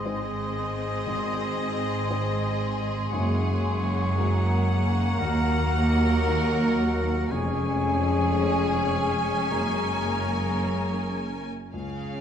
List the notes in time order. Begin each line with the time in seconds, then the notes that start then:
Already playing: G#1 G#2 G#3 C4 G#4 D#5 C6
0.05 G#3 D#4 C5
1.07 G#1 G#2
2.10 G#3 D#4 C5
3.12 F#1 F#2 A#3 C#5 F#5
4.16 G#3 F#4 A#4 A#5
5.19 D#2 D#3 F#3 F#4 A#4
6.26 A#3 F#4 A#4
7.31 F1 F2 G#3 C#4 G#4 C#5 G#5
8.39 G#3 G#4 C#5
9.50 F#1 F#2 A#3 A#4 A#5
10.62 A#3 G#4 C#5
11.73 C#2 C#3 C#4 G#4 F5